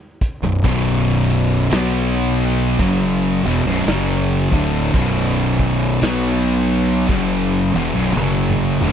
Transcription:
0.21 kick, closed hi-hat
0.42 B0 B1 F#2, closed hi-hat
0.64 B0 B1 F#2 B2, kick, closed hi-hat
0.97 closed hi-hat
1.29 closed hi-hat
1.72 B1 B2 F#3 B3, snare, closed hi-hat
2.38 closed hi-hat
2.79 F#1 F#2 C#3 F#3, kick, closed hi-hat
3.44 E1 E2 B2, closed hi-hat
3.65 B0 B1 F#2
3.87 F#1 F#2 C#3 F#3, snare, closed hi-hat
4.52 D1 D2 A2 D3, kick, closed hi-hat
4.94 B0 B1 F#2 B2, kick, closed hi-hat
5.27 closed hi-hat
5.59 kick, closed hi-hat
6.01 B1 B2 F#3 B3, snare, closed hi-hat
6.67 closed hi-hat
6.88 closed hi-hat
7.09 F#1 F#2 C#3 F#3, kick, snare
7.74 E1 E2 B2, high tom
7.95 B0 B1 F#2
8.16 F#1 F#2 C#3 F#3, mid tom
8.50 mid tom
8.81 D1 D2 A2 D3, floor tom

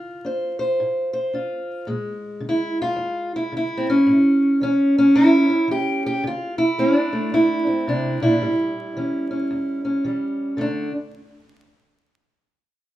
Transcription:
Already playing: D3 F4
0.25 D4 C5
0.59 C5
0.80 A2
1.13 C5
1.33 D4 F4
1.87 A#2 G#3
2.40 D3
2.49 E4
2.82 F4
2.96 F2
3.36 E4
3.52 D3
3.57 E4
3.77 C4
3.90 C#4
4.06 A2
4.61 E3 C#4
4.98 C#4
5.15 E2 E4
5.50 C#4
5.68 E3 G4
6.06 G4
6.23 D3 F4
6.58 E4
6.78 A3 D4
7.13 A3
7.32 A2 E4
7.67 C4
7.87 C3 D4
8.21 A#2 E4
8.42 A2 G3
8.97 E3 C#4
9.31 C#4
9.51 E2
9.85 C#4
10.04 E3 G3
10.57 D3 A3
10.61 D4

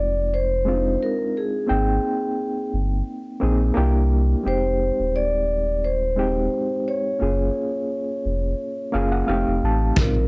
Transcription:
Already playing: F1 G#3 C4 D#4 F4 D5
0.34 C5
0.65 G#3 C4 D4 F4
0.74 D#4
1.03 A#4
1.37 G#4
1.66 G#1 A#3 C4 D#4 G5
2.73 G1
3.40 A#1 A#3 C4 D#4 G#4
3.74 C2 A#3 D4 E4 G4
4.43 F1 G#3 C4 D#4 G4
4.48 C5
5.00 D#1
5.16 D5
5.84 C5
6.16 G#3 C4 D#4 G4
6.88 C#5
7.19 F#1 A#3 C#4 F4 G#4
8.26 F1
8.92 F#1 A#3 C#4 F4 G#4 F5
9.12 F#5
9.27 F1 G#3 C4 D#4 G4 F5
9.33 A3
9.48 F1
9.63 A1 A5
9.96 A#1 G#3 F4 A#4, kick, closed hi-hat

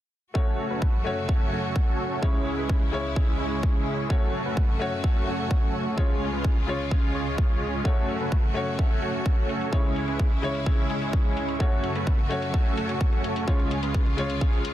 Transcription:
0.34 F#2 C#3 A3 C#4 F#4 A4 C#5, kick
0.70 A3 C#4 F#4 A4 B4
0.82 kick
1.04 A3 C#4 F#4 C#5
1.29 A3 C#4 F#4 A4 E5, kick
1.52 A3 C#4 F#4 A4 C#5
1.76 kick
2.21 C#2 C#3 G#3 C#4 E4 C#5, kick
2.58 G#3 C#4 E4 G#4 B4
2.69 kick
2.92 C#3 G#3 C#4 E4 C#5
3.16 G#3 C#4 E4 G#4 E5, kick
3.40 G#3 C#4 E4 G#4 C#5
3.63 kick
4.09 F#2 A3 C#4 F#4 C#5, kick
4.45 A3 C#4 F#4 A4 B4
4.57 kick
4.79 A3 C#4 F#4 C#5
5.04 A3 C#4 F#4 A4 E5, kick
5.27 A3 C#4 F#4 A4 C#5
5.51 kick
5.97 C#2 C#3 G#3 C#4 F4 C#5, kick
6.33 G#3 C#4 F4 G#4 B4
6.44 kick
6.67 C#3 G#3 C#4 F4 C#5
6.91 G#3 C#4 F4 G#4 F5, kick
7.15 G#3 C#4 F4 G#4 C#5
7.38 kick
7.84 F#2 A3 C#4 F#4 A4 C#5, kick
7.97 closed hi-hat
8.09 closed hi-hat
8.20 A3 C#4 F#4 A4 B4, closed hi-hat
8.32 kick, closed hi-hat
8.44 closed hi-hat
8.54 A3 C#4 F#4 C#5, closed hi-hat
8.67 closed hi-hat
8.79 A3 C#4 F#4 A4 E5, kick, closed hi-hat
8.91 closed hi-hat
9.02 A3 C#4 F#4 A4 C#5, closed hi-hat
9.14 closed hi-hat
9.26 kick, closed hi-hat
9.38 closed hi-hat
9.49 closed hi-hat
9.61 closed hi-hat
9.71 C#2 C#3 G#3 C#4 E4 G#4 C#5, kick, closed hi-hat
9.84 closed hi-hat
9.96 closed hi-hat
10.08 G#3 C#4 E4 G#4 B4, closed hi-hat
10.19 kick, closed hi-hat
10.31 closed hi-hat
10.42 C#3 G#3 C#4 E4 C#5, closed hi-hat
10.55 closed hi-hat
10.66 G#3 C#4 E4 G#4 E5, kick, closed hi-hat
10.78 closed hi-hat
10.90 G#3 C#4 E4 G#4 C#5, closed hi-hat
11.02 closed hi-hat
11.13 kick, closed hi-hat
11.25 closed hi-hat
11.37 closed hi-hat
11.49 closed hi-hat
11.59 F#2 A3 C#4 F#4 A4 C#5, kick, closed hi-hat
11.72 closed hi-hat
11.84 closed hi-hat
11.95 A3 C#4 F#4 A4 B4, closed hi-hat
12.07 kick, closed hi-hat
12.19 closed hi-hat
12.29 A3 C#4 F#4 C#5, closed hi-hat
12.42 closed hi-hat
12.54 A3 C#4 F#4 A4 E5, kick, closed hi-hat
12.66 closed hi-hat
12.77 A3 C#4 F#4 A4 C#5, closed hi-hat
12.89 closed hi-hat
13.01 kick, closed hi-hat
13.13 closed hi-hat
13.24 closed hi-hat
13.36 closed hi-hat
13.46 C#2 C#3 G#3 C#4 F4 G#4 C#5, kick, closed hi-hat
13.59 closed hi-hat
13.71 closed hi-hat
13.83 G#3 C#4 F4 G#4 B4, closed hi-hat
13.94 kick, closed hi-hat
14.06 closed hi-hat
14.17 C#3 G#3 C#4 F4 C#5, closed hi-hat
14.30 closed hi-hat
14.41 G#3 C#4 F4 G#4 F5, kick, closed hi-hat
14.53 closed hi-hat
14.65 closed hi-hat

